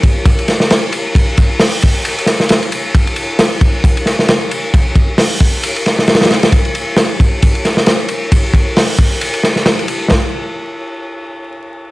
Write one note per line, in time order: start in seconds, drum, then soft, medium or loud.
0.03 kick loud
0.03 ride medium
0.25 kick loud
0.25 ride medium
0.39 ride soft
0.48 snare soft
0.48 ride medium
0.60 snare medium
0.71 snare loud
0.71 ride medium
0.93 ride medium
1.15 kick loud
1.15 ride loud
1.37 kick loud
1.37 ride medium
1.60 snare loud
1.60 open hi-hat medium
1.82 kick medium
1.82 ride medium
2.05 ride medium
2.18 ride soft
2.26 snare soft
2.26 ride medium
2.40 snare soft
2.49 snare loud
2.49 ride medium
2.63 ride soft
2.72 ride medium
2.95 kick loud
2.95 ride medium
3.07 ride soft
3.16 ride medium
3.39 snare loud
3.39 ride loud
3.61 kick loud
3.61 ride medium
3.84 kick loud
3.84 ride medium
3.97 ride soft
4.06 snare soft
4.06 ride medium
4.19 snare soft
4.29 snare loud
4.29 ride medium
4.51 ride medium
4.74 kick loud
4.74 ride medium
4.96 kick loud
4.96 ride medium
5.18 snare loud
5.18 open hi-hat medium
5.40 kick loud
5.40 ride medium
5.63 ride medium
5.76 ride soft
5.86 snare soft
5.86 ride medium
5.99 snare soft
6.08 snare medium
6.08 ride medium
6.15 snare medium
6.15 ride medium
6.21 snare loud
6.21 ride medium
6.25 snare loud
6.25 ride medium
6.31 snare loud
6.31 ride medium
6.43 snare loud
6.43 ride medium
6.52 kick loud
6.52 ride medium
6.65 ride soft
6.75 ride medium
6.97 snare loud
6.97 ride medium
7.20 kick loud
7.20 ride medium
7.42 kick loud
7.42 ride medium
7.55 ride soft
7.65 snare soft
7.65 ride medium
7.77 snare soft
7.86 snare loud
7.86 ride medium
8.09 ride medium
8.32 kick loud
8.32 ride loud
8.54 kick medium
8.54 ride medium
8.77 snare loud
8.77 open hi-hat medium
8.98 kick loud
8.98 ride medium
9.21 ride medium
9.34 ride soft
9.43 snare soft
9.43 ride medium
9.56 snare soft
9.66 snare loud
9.66 ride medium
9.79 ride soft
9.88 ride medium
10.11 kick loud
10.11 snare loud